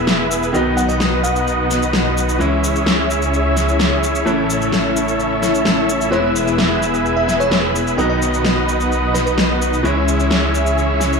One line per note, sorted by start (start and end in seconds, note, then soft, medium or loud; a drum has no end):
0.00 0.52 E1 medium
0.00 0.50 E3 medium
0.00 0.51 G#3 medium
0.00 0.51 B3 medium
0.00 0.51 E4 medium
0.00 0.52 E4 medium
0.00 0.51 G#4 medium
0.00 0.51 B4 medium
0.00 0.52 B4 medium
0.00 0.50 E5 medium
0.00 0.51 E5 medium
0.00 0.52 G#5 medium
0.00 0.52 E6 medium
0.07 snare loud
0.07 shaker soft
0.31 shaker medium
0.43 shaker soft
0.53 2.38 B1 medium
0.53 2.36 D#3 medium
0.53 2.37 F#3 medium
0.53 2.37 B3 medium
0.53 2.37 D#4 medium
0.53 2.38 D#4 medium
0.53 2.37 F#4 medium
0.53 2.38 B4 medium
0.53 2.37 B4 medium
0.53 2.38 D#5 medium
0.53 2.37 D#5 medium
0.53 2.38 F#5 medium
0.53 2.38 D#6 medium
0.53 shaker soft
0.77 0.86 F#5 medium
0.77 shaker medium
0.89 0.96 D#5 medium
0.89 shaker soft
1.00 1.08 D#5 medium
1.00 snare loud
1.00 shaker soft
1.23 1.58 F#5 medium
1.23 shaker medium
1.36 shaker soft
1.47 shaker soft
1.70 snare soft
1.70 shaker medium
1.82 shaker soft
1.93 snare loud
1.93 shaker soft
2.17 shaker medium
2.29 shaker soft
2.39 4.24 C#2 medium
2.39 4.23 E3 medium
2.39 4.23 G#3 medium
2.39 4.23 C#4 medium
2.39 4.23 E4 medium
2.39 4.24 E4 medium
2.39 4.23 G#4 medium
2.39 6.08 C#5 medium
2.39 4.23 C#5 medium
2.39 4.24 E5 medium
2.39 4.23 E5 medium
2.39 4.24 G#5 medium
2.39 4.24 E6 medium
2.39 shaker soft
2.64 shaker medium
2.76 shaker soft
2.86 snare loud
2.86 shaker soft
3.10 shaker medium
3.22 shaker soft
3.34 shaker soft
3.56 snare soft
3.56 shaker medium
3.69 shaker soft
3.79 snare loud
3.79 shaker soft
4.03 shaker medium
4.15 shaker soft
4.25 6.10 A1 medium
4.25 6.09 A2 medium
4.25 6.09 E3 medium
4.25 6.09 A3 medium
4.25 6.09 C#4 medium
4.25 6.10 C#4 medium
4.25 6.09 E4 medium
4.25 6.10 E4 medium
4.25 6.09 A4 medium
4.25 6.09 C#5 medium
4.25 6.09 E5 medium
4.25 7.94 E5 medium
4.25 6.10 A5 medium
4.25 7.94 E6 medium
4.25 shaker soft
4.50 shaker medium
4.62 shaker soft
4.72 snare loud
4.72 shaker soft
4.96 shaker medium
5.08 shaker soft
5.19 swell medium
5.19 shaker soft
5.42 snare soft
5.42 shaker medium
5.55 shaker soft
5.65 snare loud
5.65 shaker soft
5.89 shaker medium
6.01 shaker soft
6.11 7.96 E1 medium
6.11 7.95 E3 medium
6.11 7.95 G#3 medium
6.11 7.95 B3 medium
6.11 7.95 E4 medium
6.11 7.96 E4 medium
6.11 7.95 G#4 medium
6.11 7.95 B4 medium
6.11 7.96 B4 medium
6.11 6.28 C#5 medium
6.11 7.95 E5 medium
6.11 7.96 G#5 medium
6.11 shaker soft
6.36 shaker medium
6.48 shaker soft
6.58 snare loud
6.58 shaker soft
6.82 shaker medium
6.94 shaker soft
7.06 shaker soft
7.17 7.24 E5 medium
7.28 7.36 E5 medium
7.28 snare soft
7.28 shaker medium
7.40 7.47 C#5 medium
7.40 shaker soft
7.51 7.59 C#5 medium
7.51 snare loud
7.51 shaker soft
7.75 shaker medium
7.87 shaker soft
7.97 9.82 B1 medium
7.97 9.81 D#3 medium
7.97 9.81 F#3 medium
7.97 9.81 B3 medium
7.97 9.81 D#4 medium
7.97 9.82 D#4 medium
7.97 9.81 F#4 medium
7.97 9.81 B4 medium
7.97 9.82 B4 medium
7.97 8.05 D#5 medium
7.97 9.81 D#5 medium
7.97 9.82 D#5 medium
7.97 9.82 F#5 medium
7.97 9.82 D#6 medium
7.97 shaker soft
8.10 8.17 D#5 medium
8.22 shaker medium
8.34 shaker soft
8.45 snare loud
8.45 shaker soft
8.69 shaker medium
8.80 shaker soft
8.92 shaker soft
9.14 9.22 B4 medium
9.14 snare soft
9.14 shaker medium
9.26 9.33 B4 medium
9.26 shaker soft
9.38 snare loud
9.38 shaker soft
9.62 shaker medium
9.73 shaker soft
9.83 11.20 C#2 medium
9.83 11.20 E3 medium
9.83 11.20 G#3 medium
9.83 11.20 C#4 medium
9.83 11.20 E4 medium
9.83 11.20 G#4 medium
9.83 11.20 C#5 medium
9.83 11.20 E5 medium
9.83 11.20 G#5 medium
9.83 11.20 E6 medium
9.83 shaker soft
10.08 shaker medium
10.20 shaker soft
10.31 snare loud
10.31 shaker soft
10.55 shaker medium
10.66 shaker soft
10.78 shaker soft
11.00 snare soft
11.00 shaker medium
11.13 shaker soft